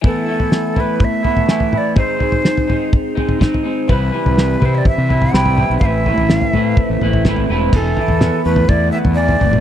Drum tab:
CC |----------------|----------------|----------------|----------------|
SD |----o-------o---|----o-------o---|----o-------o---|----o-------o---|
T2 |--------------o-|------------o---|--------------o-|------------o---|
FT |o--o--o-o-oo-o--|o-oo-oo-o-oo-o--|o--o--o-o-oo-o--|o-oo-oo-o-oo-o--|
BD |o-------o-------|o-------o---o---|o-------o-------|o-------o---o---|

CC |x---------------|
SD |----o-----------|
T2 |----o----------o|
FT |o-oo---oo--o-oo-|
BD |o-------o-------|